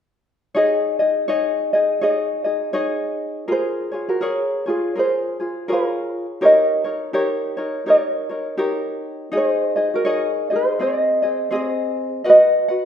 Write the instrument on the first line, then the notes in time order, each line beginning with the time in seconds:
ukulele
0.55 D#4 G#4 C#5 D#5
0.99 D#4 G#4 D#5
1.28 D#4 G#4 C#5 D#5
1.73 D#4 G#4 D#5
2.01 D#4 G#4 C#5 D#5
2.44 D#4 G#4 D#5
2.73 D#4 G#4 C#5 D#5
3.48 F4 G#4 A#4
3.52 C5
3.92 F4 G#4 C#5
4.09 F#4 A#4
4.21 G#4 A#4 C#5
4.66 F4 G#4 C#5
4.95 F4 G#4 A#4 C5
5.40 F4 G#4
5.68 F4 G#4 A#4 C#5
5.72 F4 A#4
6.41 D#4 G4 A#4 C#5
6.45 D#5
6.84 D#4 A#4 C#5
7.13 D#4 G4 A#4 C#5
7.57 D#4 A#4 C#5
7.86 D#4 G4 A#4 C#5
7.90 C#5
8.29 D#4 A#4 C#5
8.57 D#4 G4 A#4 C#5
9.32 D#4 G#4 D#5
9.37 C5
9.76 D#4 G#4 D#5
9.94 F#4 A#4
10.05 D#4 G#4 C#5 D#5
10.50 D#4 G#4 D#5
10.56 C5
10.79 C4 G#4 C5 D#5
11.22 C4 G#4 D#5
11.51 C4 G#4 C5 D#5
11.55 C5
12.24 F#4 B4 D#5 F#5
12.30 D#5
12.68 F#4 B4 F#5